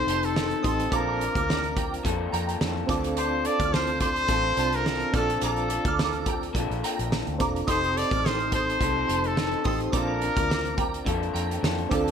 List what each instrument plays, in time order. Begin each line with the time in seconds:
Already playing: clean electric guitar F3 C4 D#4 A4 C5, synth keys C4 D#4 G4 A4, trumpet C5
0.07 fingered electric bass F1, synth bell A5 C6, closed hi-hat
0.23 trumpet A4, closed hi-hat
0.34 clean electric guitar F3 C4 D#4 A4, snare
0.51 closed hi-hat
0.63 fingered electric bass A1, synth keys C4 D#4 G4 C5, synth bell C6 D#6, kick, closed hi-hat
0.67 trumpet A4
0.80 closed hi-hat
0.90 fingered electric bass A#1, clean electric guitar A#3 D4 F4 A4, synth keys C4 D4 F4, synth bell A#5 D6, kick, closed hi-hat
0.95 trumpet A#4, synth keys A5
1.20 clean electric guitar D4 F4, closed hi-hat
1.35 fingered electric bass D2, synth bell D6 F6, kick, closed hi-hat
1.48 synth bell A#5 D6, snare
1.64 closed hi-hat
1.77 synth bell G5 A#5, kick, closed hi-hat
1.94 closed hi-hat
2.03 fingered electric bass F2, clean electric guitar A#3 D4 F4 A4, kick, closed hi-hat
2.32 fingered electric bass F2, synth bell G5 A#5, closed hi-hat
2.49 closed hi-hat
2.60 fingered electric bass F2, clean electric guitar A#3 D4 F4 A4, snare
2.86 fingered electric bass D2, synth keys C4 D4 F4, clean electric guitar C4 F4 A4, synth bell A5 D6, kick, snare, closed hi-hat
2.91 clean electric guitar D3, synth keys A4
3.04 closed hi-hat
3.17 trumpet C5, synth bell A5 D6, closed hi-hat
3.44 clean electric guitar C4 F4 A4, trumpet D5, closed hi-hat
3.60 fingered electric bass D2, synth bell D6 F6, kick, closed hi-hat
3.72 trumpet C5, synth bell A5 D6, snare
3.87 closed hi-hat
4.00 trumpet C5, synth bell A5 C6, kick, closed hi-hat
4.16 closed hi-hat
4.28 fingered electric bass A1, clean electric guitar D3 C4 F4 A4, kick, closed hi-hat
4.57 fingered electric bass C2, synth keys C4 D4 F4 A5, synth bell A5 C6, closed hi-hat
4.72 trumpet A#4, closed hi-hat
4.84 clean electric guitar D3 C4 F4 A4, snare
5.00 closed hi-hat
5.11 fingered electric bass A#1, synth keys C4 D4 F4, clean electric guitar F4 A4, synth bell D6 F6, kick, snare, closed hi-hat
5.16 clean electric guitar A#3 D4, synth keys A4, trumpet A4
5.30 closed hi-hat
5.41 fingered electric bass A#1, trumpet A4, synth bell A#5 D6, closed hi-hat
5.56 closed hi-hat
5.69 clean electric guitar F4 A4, closed hi-hat
5.73 clean electric guitar D4
5.85 fingered electric bass D2, synth bell D6 F6, kick, closed hi-hat
5.99 synth bell A#5 D6, snare
6.13 closed hi-hat
6.26 synth bell G5 A#5, kick, closed hi-hat
6.43 closed hi-hat
6.53 fingered electric bass A#1, clean electric guitar A#3 D4, kick, closed hi-hat
6.57 clean electric guitar F4 A4
6.71 fingered electric bass A#1, closed hi-hat
6.83 synth bell G5 A#5, closed hi-hat
6.99 fingered electric bass A#1, closed hi-hat
7.12 snare
7.27 fingered electric bass D2, closed hi-hat
7.38 fingered electric bass E1, synth keys C4 D4 F4 A4, synth bell A#5 D6, kick, snare, closed hi-hat
7.56 closed hi-hat
7.66 fingered electric bass F1, clean electric guitar F3 C4 D#4, synth keys C4 D#4 G4, synth bell C6 D#6, kick, closed hi-hat
7.70 clean electric guitar A4, synth keys A4, trumpet C5
7.84 closed hi-hat
7.95 clean electric guitar D#4 A4, trumpet D5, closed hi-hat
8.00 clean electric guitar C4
8.11 fingered electric bass A1, synth bell D6 F6, kick, closed hi-hat
8.24 trumpet C5, synth bell C6 D#6, snare
8.40 closed hi-hat
8.51 trumpet C5, synth bell A5 C6, kick, closed hi-hat
8.70 closed hi-hat
8.80 fingered electric bass C2, clean electric guitar F3 C4 D#4 A4, kick, closed hi-hat
9.07 fingered electric bass F1, synth bell A5 C6, closed hi-hat
9.24 trumpet A4, closed hi-hat
9.35 clean electric guitar F3 C4 D#4, snare
9.40 clean electric guitar A4
9.52 closed hi-hat
9.64 fingered electric bass A1, synth keys C4 D#4 G4 A4, trumpet A4, synth bell C6 D#6, kick, open hi-hat
9.80 closed hi-hat
9.91 fingered electric bass A#1, clean electric guitar A#3 D4 F4, synth keys C4 D4 F4, synth bell A#5 D6, kick, closed hi-hat
9.96 clean electric guitar A4, trumpet A#4, synth keys A5
10.22 clean electric guitar D4 F4, closed hi-hat
10.36 fingered electric bass D2, synth bell D6 F6, kick, closed hi-hat
10.48 synth bell A#5 D6, snare
10.65 closed hi-hat
10.77 synth bell G5 A#5, kick, closed hi-hat
10.94 closed hi-hat
11.05 fingered electric bass F2, clean electric guitar A#3 D4 F4 A4, kick, closed hi-hat
11.23 closed hi-hat
11.34 fingered electric bass F2, synth bell G5 A#5, closed hi-hat
11.51 closed hi-hat
11.61 fingered electric bass F2, clean electric guitar A#3 D4 F4 A4, snare
11.78 closed hi-hat
11.89 fingered electric bass D2, clean electric guitar D3 C4 F4 A4, synth keys C4 D4 F4, synth bell A5 D6, kick, closed hi-hat
11.94 synth keys A4
12.08 closed hi-hat